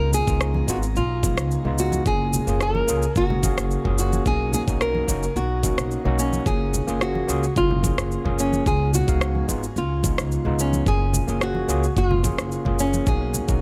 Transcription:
Already playing: C#2 G#3 B3 D#4 F4 A#4
0.13 G#4, low conga, cabasa
0.27 C#2 G#3 B3 D#4 F4, kick, cabasa
0.41 cross-stick, cabasa
0.54 high conga
0.67 G#1 G#3 B3 D#4 F4 F#4, kick, cabasa
0.83 cabasa
0.95 B1 F4, cabasa
1.23 G#3 B3 D#4 F4, kick, high conga, cabasa
1.37 C#2, cross-stick, cabasa
1.51 cabasa
1.65 C#2 G#3 B3 D#4 F4, low conga
1.78 F#4, cabasa
1.92 high conga, cabasa
2.05 F#1 A#3 C#4 F4 G#4, kick, cabasa
2.33 low conga, cabasa
2.47 F#1 A#3 C#4 F4 G#4, cabasa
2.61 A#4, cross-stick, cabasa
2.75 high conga
2.87 C#2 A#3 C#4 F4 G#4, cabasa
3.02 cabasa
3.16 F#1 F#4, kick, cabasa
3.30 low conga
3.42 A#3 C#4 G#4 F5, kick, high conga, cabasa
3.57 F#1, cross-stick, cabasa
3.71 cabasa
3.84 F#1 A#3 C#4 F4 G#4, kick, low conga
3.98 F#4, cabasa
4.13 high conga, cabasa
4.25 B1 A#3 C#4 D#4 F#4 G#4, kick, cabasa
4.53 G#4, low conga, cabasa
4.67 B1 A#3 C#4 D#4 F#4, kick, cabasa
4.81 A#4, cross-stick, cabasa
4.95 high conga
5.07 F#1 A#3 C#4 D#4 F#4, kick, cabasa
5.23 cabasa
5.36 B1 F#4, cabasa
5.63 A#3 C#4 D#4 F#4, kick, high conga, cabasa
5.78 B1, cross-stick, cabasa
5.91 cabasa
6.04 B1 A#3 C#4 D#4 F#4, low conga
6.19 C#4, cabasa
6.33 high conga, cabasa
6.45 F#1 A#3 C#4 F4 G#4, kick, cabasa
6.74 low conga, cabasa
6.87 F#1 A#3 C#4 F4 G#4, cabasa
7.01 F#4, cross-stick, cabasa
7.15 high conga
7.27 C#2 A#3 C#4 F4 G#4, cabasa
7.43 cabasa
7.56 F#1 F4, kick, cabasa
7.71 low conga
7.82 A#3 C#4 F4 G#4, kick, high conga, cabasa
7.98 F#1, cross-stick, cabasa
8.12 cabasa
8.24 F#1 A#3 C#4 F4 G#4, kick, low conga
8.39 C#4, cabasa
8.52 high conga, cabasa
8.65 C#2 G#3 B3 D#4 F4 G#4, kick, cabasa
8.93 F#4, low conga, cabasa
9.07 C#2 G#3 B3 D#4 F5, kick, cabasa
9.21 cross-stick, cabasa
9.35 high conga
9.48 G#1 G#3 B3 D#4 F4, kick, cabasa
9.63 cabasa
9.76 C#2 F4, cabasa
10.03 G#3 B3 D#4 F4, kick, high conga, cabasa
10.18 C#2, cross-stick, cabasa
10.32 cabasa
10.45 C#2 G#3 B3 D#4 F4, low conga
10.59 C#4, cabasa
10.73 high conga, cabasa
10.86 F#1 A#3 C#4 F4 G#4, kick, cabasa
11.13 low conga, cabasa
11.27 F#1 A#3 C#4 F4 G#4, cabasa
11.41 F#4, cross-stick, cabasa
11.55 high conga
11.68 C#2 A#3 C#4 F4 G#4, cabasa
11.84 cabasa
11.96 F#1 F#4, kick, cabasa
12.09 F4, low conga
12.23 A#3 C#4 F4 G#4, kick, high conga, cabasa
12.38 F#1, cross-stick, cabasa
12.52 cabasa
12.65 F#1 A#3 C#4 F4 G#4, kick, low conga
12.79 C#4, cabasa
12.93 high conga, cabasa
13.05 B1 A#3 C#4 D#4 F#4 G#4, kick, cabasa
13.34 low conga, cabasa
13.47 B1 A#3 C#4 D#4 F#4, kick, cabasa

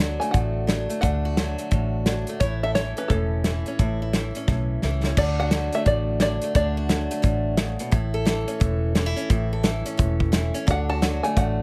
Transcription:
Already playing: D2 D3 D4 F#4 A5
0.00 F#3
0.20 A3 G#5, closed hi-hat
0.31 A1 A2 F#5, kick, closed hi-hat
0.67 F#3 D4, snare, closed hi-hat
0.89 A3, closed hi-hat
1.01 D2 D3 D4 F#5, kick, closed hi-hat
1.25 F#4
1.37 F#3, snare, closed hi-hat
1.58 A3, closed hi-hat
1.71 A1 A2, kick, closed hi-hat
2.06 F#3 D4, snare, closed hi-hat
2.27 A3, closed hi-hat
2.40 A1 A2 E4 C#5, kick, closed hi-hat
2.63 A4 E5
2.75 E3 C#5, snare, closed hi-hat
2.97 C#4 B4, closed hi-hat
3.08 E1 A2 A4, kick, closed hi-hat
3.44 E3 E4, snare, closed hi-hat
3.66 C#4, closed hi-hat
3.79 A1 A2 E4, kick, closed hi-hat
4.02 E4
4.13 E3, snare, closed hi-hat
4.35 C#4, closed hi-hat
4.48 B1 A2, kick, snare
4.82 C#2 E3 E4, snare
5.04 C#4, snare
5.17 D2 D3 D4 D5, kick, crash
5.40 F#4 F#5
5.51 F#3, snare, closed hi-hat
5.73 A3 E5, closed hi-hat
5.86 A1 A2 D5, kick, closed hi-hat
6.20 F#3 D4 D5, snare, closed hi-hat
6.42 A3, closed hi-hat
6.55 D2 D3 D4 D5, kick, closed hi-hat
6.77 F#4
6.89 F#3, snare, closed hi-hat
7.11 A3, closed hi-hat
7.22 A1 A2, kick, closed hi-hat
7.57 C#3, snare, closed hi-hat
7.79 B2, closed hi-hat
7.91 A1 A2 E4, kick, closed hi-hat
8.14 A4
8.25 E3, snare, closed hi-hat
8.48 C#4, closed hi-hat
8.60 E1 A2, kick, closed hi-hat
8.95 E3 C#4, snare, closed hi-hat
9.06 E4
9.16 C#4, closed hi-hat
9.30 A1 A2 E4, kick, closed hi-hat
9.53 A4
9.63 E3, snare, closed hi-hat
9.86 C#4, closed hi-hat
9.97 E1 A2, kick, closed hi-hat
10.20 kick
10.32 E3 E4, snare, closed hi-hat
10.54 C#4, closed hi-hat
10.67 D2 D3 D4 F#4 A4 F#5, kick, closed hi-hat
10.89 F#4 A5
11.02 F#3, snare, closed hi-hat
11.23 A3 G#5, closed hi-hat
11.37 A1 A2 F#5, kick, closed hi-hat

